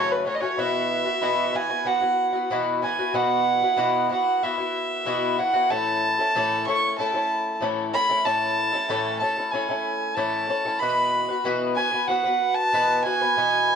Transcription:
Already playing: twelve-string acoustic guitar F#2 C#3 E3 A3 C#4 F#4, fiddle C#5
0.12 fiddle B4
0.24 twelve-string acoustic guitar E3 A3 C#4 F#4, fiddle C#5
0.35 fiddle D#5
0.41 twelve-string acoustic guitar E3 A3 C#4 F#4, fiddle C#5
0.58 twelve-string acoustic guitar B2 E3 B3 E4 F#4, fiddle E5
1.05 twelve-string acoustic guitar B3 E4 F#4
1.21 twelve-string acoustic guitar B2 E3 B3 E4 F#4
1.53 twelve-string acoustic guitar E3 B3 E4 F#4, fiddle G#5
1.69 twelve-string acoustic guitar B3 E4 F#4
1.85 twelve-string acoustic guitar E3 B3 E4 F#4, fiddle F#5
2.01 twelve-string acoustic guitar B3 E4 F#4
2.33 twelve-string acoustic guitar B3 E4 F#4
2.50 twelve-string acoustic guitar B2 E3 B3 E4 F#4
2.82 twelve-string acoustic guitar E3 B3 E4 F#4, fiddle G#5
2.99 twelve-string acoustic guitar B3 E4 F#4
3.14 twelve-string acoustic guitar B2 E3 B3 E4 F#4, fiddle F#5
3.62 twelve-string acoustic guitar B3 E4 F#4
3.77 twelve-string acoustic guitar B2 E3 B3 E4 F#4
4.09 twelve-string acoustic guitar E3 B3 E4 F#4, fiddle F#5
4.42 twelve-string acoustic guitar E3 B3 E4 F#4, fiddle E5
4.58 twelve-string acoustic guitar B3 E4 F#4
5.05 twelve-string acoustic guitar B2 E3 B3 E4 F#4
5.38 twelve-string acoustic guitar E3 B3 E4 F#4, fiddle F#5
5.53 twelve-string acoustic guitar B3 E4 F#4
5.70 twelve-string acoustic guitar A2 E3 A3 C#4 E4 A4, fiddle A5
6.19 twelve-string acoustic guitar A3 C#4 E4 A4
6.35 twelve-string acoustic guitar A2 E3 A3 C#4 E4 A4
6.66 twelve-string acoustic guitar A3 C#4 E4 A4, fiddle C#6
6.98 twelve-string acoustic guitar A3 C#4 E4 A4, fiddle A5
7.13 twelve-string acoustic guitar A3 C#4 E4 A4
7.61 twelve-string acoustic guitar A2 E3 A3 C#4 E4 A4
7.93 twelve-string acoustic guitar A3 C#4 E4 A4, fiddle B5
8.09 twelve-string acoustic guitar A3 C#4 E4 A4
8.25 twelve-string acoustic guitar A2 E3 A3 C#4 E4 A4, fiddle A5
8.73 twelve-string acoustic guitar A3 C#4 E4 A4
8.89 twelve-string acoustic guitar A2 E3 A3 C#4 E4 A4
9.19 twelve-string acoustic guitar A3 C#4, fiddle A5
9.23 twelve-string acoustic guitar E4 A4
9.38 twelve-string acoustic guitar A3 C#4 E4 A4
9.52 twelve-string acoustic guitar A3 C#4 E4 A4, fiddle G#5
9.69 twelve-string acoustic guitar A3 C#4 E4 A4
10.15 twelve-string acoustic guitar A2 E3 A3 C#4 E4 A4, fiddle A5
10.48 twelve-string acoustic guitar A3 C#4 E4 A4
10.65 twelve-string acoustic guitar A3 C#4 E4 A4
10.79 twelve-string acoustic guitar B2 E3 B3 F#4 B4, fiddle B5
11.29 twelve-string acoustic guitar B3 F#4 B4
11.44 twelve-string acoustic guitar B2 E3 B3 F#4 B4
11.75 twelve-string acoustic guitar E3 B3 F#4 B4, fiddle G#5
11.92 twelve-string acoustic guitar B3 F#4 B4
12.07 twelve-string acoustic guitar E3 B3 F#4 B4, fiddle F#5
12.25 twelve-string acoustic guitar B3 F#4 B4
12.55 fiddle A5
12.73 twelve-string acoustic guitar B2 E3 B3 F#4 B4
13.02 twelve-string acoustic guitar E3 B3 F#4, fiddle G#5
13.07 twelve-string acoustic guitar B4
13.21 twelve-string acoustic guitar B3 F#4 B4
13.36 twelve-string acoustic guitar B2 E3 B3 F#4 B4

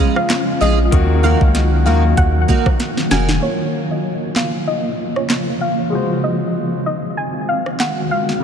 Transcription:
Already playing: grand piano C#3 G#3 F4, ambient pad F3 G#3 C#4 F4
0.00 steel-string acoustic guitar G#3 C#4 F4 G#4
0.16 synth pluck F5, cross-stick
0.30 snare, clap, closed hi-hat
0.61 sub bass A#1, steel-string acoustic guitar G#3 C#4 F4 G#4, synth pluck D#5
0.91 sub bass D#2, grand piano D#3 A#3 F#4, ambient pad D#3 F#3 A#3 F#4, kick, closed hi-hat
1.22 grand piano D#3 A#3 F#4, steel-string acoustic guitar A#3 D#4 F#4 A#4, synth pluck F5
1.41 sub bass C#2, kick
1.55 snare, closed hi-hat
1.85 sub bass D#2, grand piano D#3 A#3 F#4, steel-string acoustic guitar A#3 D#4 F#4 A#4, synth pluck F5
2.17 sub bass D#2, synth pluck F#5, kick, closed hi-hat
2.48 steel-string acoustic guitar A#3 D#4 F#4 A#4, kick
2.66 kick, cross-stick
2.80 snare, closed hi-hat
2.97 snare
3.11 sub bass F1, steel-string acoustic guitar A#3 D#4 F#4 A#4, synth pluck G#5, snare
3.29 snare
3.40 ambient pad C#3 F3 A#3 F4, grand piano A#3 F4, synth pluck C#5
3.45 grand piano C#5
3.91 synth pluck D#5
4.36 synth pluck F5, snare, clap
4.67 synth pluck D#5
5.16 synth pluck C#5, cross-stick
5.30 snare, clap
5.61 synth pluck F5
5.90 ambient pad D#3 G#3 C4 F#4, grand piano G#3 F#4
5.95 grand piano C5
6.24 synth pluck D#5
6.86 synth pluck D#5
7.17 synth pluck G#5
7.49 synth pluck F5
7.66 cross-stick
7.80 synth pluck F#5, snare, clap
8.11 synth pluck F5
8.29 snare
8.40 grand piano C#3

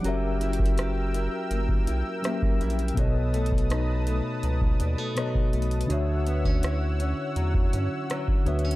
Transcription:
Already playing: steel-string acoustic guitar D4 F#4
0.01 analog synth bass F#1, tine electric piano F#3 C#4 G4, steel-string acoustic guitar F#3, analog synth pad A#4 G5 E6, closed hi-hat
0.06 tine electric piano A#4 E5
0.41 steel-string acoustic guitar E4, closed hi-hat
0.53 closed hi-hat
0.59 kick
0.66 closed hi-hat
0.78 steel-string acoustic guitar G4, cross-stick, closed hi-hat
1.14 steel-string acoustic guitar E4, closed hi-hat
1.51 analog synth bass G1, steel-string acoustic guitar A#3, closed hi-hat
1.69 kick
1.87 analog synth bass B1, steel-string acoustic guitar E4, closed hi-hat
2.22 tine electric piano F#3 C#4 G4 A#4 E5, steel-string acoustic guitar A#3, cross-stick, closed hi-hat
2.42 kick
2.61 analog synth bass A#1, steel-string acoustic guitar E4, closed hi-hat
2.70 closed hi-hat
2.79 closed hi-hat
2.88 closed hi-hat
2.94 analog synth bass B1, tine electric piano B2 B3 A4, steel-string acoustic guitar B2, analog synth pad B4 A5 D#6, kick, closed hi-hat
2.99 tine electric piano C#5 D#5
3.34 steel-string acoustic guitar A3, closed hi-hat
3.46 closed hi-hat
3.52 kick
3.58 closed hi-hat
3.70 steel-string acoustic guitar D#4, cross-stick, closed hi-hat
4.07 steel-string acoustic guitar A3, closed hi-hat
4.43 analog synth bass C#2, steel-string acoustic guitar F#3, closed hi-hat
4.61 kick
4.80 analog synth bass D#2, steel-string acoustic guitar G3, closed hi-hat
4.98 steel-string acoustic guitar A3
5.15 tine electric piano B2 B3 A4 C#5 D#5, steel-string acoustic guitar F#3, cross-stick, closed hi-hat
5.35 kick
5.53 analog synth bass B1, steel-string acoustic guitar A3, closed hi-hat
5.62 closed hi-hat
5.71 closed hi-hat
5.81 closed hi-hat
5.86 analog synth bass D2, tine electric piano D3 D4 F#4, steel-string acoustic guitar D3, analog synth pad C#5 F#5 E6, closed hi-hat
5.92 tine electric piano C#5 E5
6.26 steel-string acoustic guitar B3, closed hi-hat
6.45 steel-string acoustic guitar C#4, kick
6.63 steel-string acoustic guitar E4, cross-stick, closed hi-hat
6.99 steel-string acoustic guitar C#4, closed hi-hat
7.36 analog synth bass E2, steel-string acoustic guitar F#3, closed hi-hat
7.54 kick
7.73 analog synth bass G2, steel-string acoustic guitar C#4, closed hi-hat
8.10 steel-string acoustic guitar F#3, cross-stick, closed hi-hat
8.28 kick
8.44 analog synth bass D2, tine electric piano D3 D4 F#4 C#5 E5, steel-string acoustic guitar B3, closed hi-hat
8.59 closed hi-hat
8.64 steel-string acoustic guitar C#4
8.71 closed hi-hat

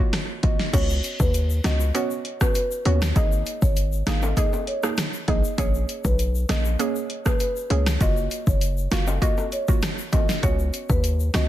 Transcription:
0.00 synth pluck A#3 F4 F#4
0.13 cross-stick, snare, closed hi-hat
0.43 808-style bass G#1, synth pluck A#3 F4 F#4, marimba D#5, kick, closed hi-hat
0.59 snare
0.73 808-style bass C#2, synth pluck B3 C#4 F#4, marimba C#5, kick, closed hi-hat, crash, shaker
0.90 shaker
1.04 closed hi-hat, shaker
1.20 808-style bass D#2, marimba B4, kick, shaker
1.34 closed hi-hat, shaker
1.50 shaker
1.64 808-style bass C#2, synth pluck B3 C#4 F#4, marimba D#5, cross-stick, snare, closed hi-hat, shaker
1.80 shaker
1.94 synth pluck B3 C#4 F#4, marimba C#5, closed hi-hat, shaker
2.11 shaker
2.25 closed hi-hat
2.41 synth pluck B3 C#4 F#4, marimba B4, kick, cross-stick, shaker
2.55 marimba B4, closed hi-hat, shaker
2.71 shaker
2.85 808-style bass D#2, synth pluck B3 C#4 F#4, marimba C#5, closed hi-hat
3.02 cross-stick, snare, shaker
3.16 808-style bass G#1, synth pluck A#3 D#4 G#4, marimba D#5, kick, closed hi-hat, shaker
3.32 shaker
3.46 closed hi-hat, shaker
3.62 808-style bass G#1, marimba C#5, kick, shaker
3.77 closed hi-hat, shaker
3.92 shaker
4.07 808-style bass G#1, synth pluck A#3 D#4 G#4, marimba F5, cross-stick, snare, closed hi-hat, shaker
4.23 high timbale, shaker
4.37 synth pluck A#3 D#4 G#4, marimba D#5, kick, closed hi-hat, shaker
4.53 high timbale, shaker
4.67 marimba C#5, closed hi-hat
4.83 synth pluck A#3 D#4 G#4, cross-stick, shaker
4.97 cross-stick, snare, closed hi-hat, shaker
5.14 shaker
5.28 808-style bass A#1, synth pluck A#3 D#4 G#4, marimba D#5, kick, closed hi-hat
5.44 shaker
5.58 808-style bass A#1, synth pluck A#3 C#4 G#4, marimba C#5, kick, closed hi-hat, shaker
5.75 shaker
5.89 closed hi-hat, shaker
6.04 808-style bass B1, marimba B4, kick, shaker
6.19 closed hi-hat, shaker
6.35 shaker
6.49 808-style bass A#1, synth pluck A#3 C#4 G#4, marimba D#5, cross-stick, snare, closed hi-hat, shaker
6.65 shaker
6.79 synth pluck A#3 C#4 G#4, marimba C#5, closed hi-hat, shaker
6.96 shaker
7.10 closed hi-hat
7.26 synth pluck A#3 C#4 G#4, marimba B4, kick, cross-stick, shaker
7.40 marimba B4, closed hi-hat, shaker
7.56 shaker
7.70 808-style bass C#2, synth pluck A#3 C#4 G#4, marimba C#5, closed hi-hat
7.86 cross-stick, snare, shaker
8.01 808-style bass F#1, synth pluck A#3 F4 F#4, marimba D#5, kick, closed hi-hat, shaker
8.17 shaker
8.31 closed hi-hat, shaker
8.47 808-style bass F#1, marimba C#5, kick, shaker
8.61 closed hi-hat, shaker
8.77 shaker
8.91 808-style bass F#1, synth pluck A#3 F4 F#4, marimba F5, cross-stick, snare, closed hi-hat, shaker
9.07 high timbale, shaker
9.22 synth pluck A#3 F4 F#4, marimba D#5, kick, closed hi-hat, shaker
9.38 high timbale, shaker
9.52 marimba C#5, closed hi-hat, shaker
9.68 synth pluck A#3 F4 F#4, kick, shaker
9.82 cross-stick, snare, closed hi-hat, shaker
9.98 shaker
10.13 808-style bass G#1, synth pluck A#3 F4 F#4, marimba D#5, kick, closed hi-hat, high timbale, shaker
10.29 snare, shaker
10.43 808-style bass C#2, synth pluck B3 C#4 F#4, marimba C#5, kick, closed hi-hat, shaker
10.59 shaker
10.73 closed hi-hat, shaker
10.90 808-style bass D#2, marimba B4, kick, shaker
11.04 closed hi-hat, shaker
11.20 shaker
11.34 808-style bass C#2, synth pluck B3 C#4 F#4, marimba D#5, cross-stick, snare, closed hi-hat, shaker

